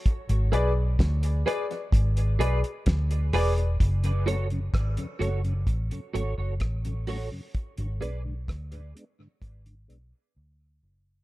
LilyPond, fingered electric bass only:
\new Staff \with { instrumentName = "Fingered electric bass" } { \clef bass \time 4/4 \key fis \minor \tempo 4 = 64 r16 gis,,16 b,,8 d,8 r8 gis,,8 b,,16 r16 d,8 e,,8 | fis,,4 gis,,16 r16 fis,,8 a,,16 r16 gis,,16 fis,,16 a,,8. r16 | r16 gis,,16 b,,8 d,8 r8 gis,,8 b,,16 r16 d,8 fis,,8 | }